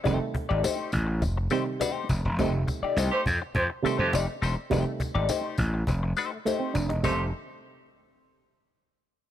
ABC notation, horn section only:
X:1
M:4/4
L:1/16
Q:1/4=103
K:Fmix
V:1 name="Horn section"
z16 | z4 z [A,Gc] z2 [A,Gc] z2 [A,Gc]2 z3 | z16 | [A,Gc]2 z12 z2 |]